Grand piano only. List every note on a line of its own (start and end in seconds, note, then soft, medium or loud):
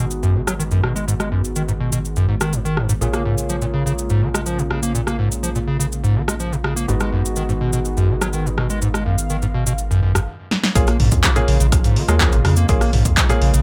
0.00 2.98 G#3 medium
0.00 2.98 B3 medium
0.00 2.98 D#4 medium
0.00 2.98 F#4 medium
3.01 6.85 A#3 medium
3.01 6.85 C#4 medium
3.01 6.85 F4 medium
3.01 6.85 G#4 medium
6.88 10.27 G#3 medium
6.88 10.27 B3 medium
6.88 10.27 D#4 medium
6.88 10.27 F#4 medium
10.75 10.88 A#3 medium
10.75 10.88 C#4 medium
10.75 10.88 F4 medium
10.75 10.88 G#4 loud
11.36 11.55 A#3 medium
11.36 11.55 C#4 medium
11.36 11.55 F4 medium
11.36 11.55 G#4 loud
12.09 12.19 A#3 medium
12.09 12.19 C#4 medium
12.09 12.19 F4 medium
12.09 12.19 G#4 loud
12.20 12.33 A#3 medium
12.20 12.33 C#4 medium
12.20 12.33 F4 medium
12.20 12.33 G#4 loud
12.69 12.81 A#3 medium
12.69 12.81 C#4 medium
12.69 12.81 F4 medium
12.69 12.81 G#4 loud
13.30 13.49 A#3 loud
13.30 13.49 C#4 medium
13.30 13.49 F4 medium
13.30 13.49 G#4 loud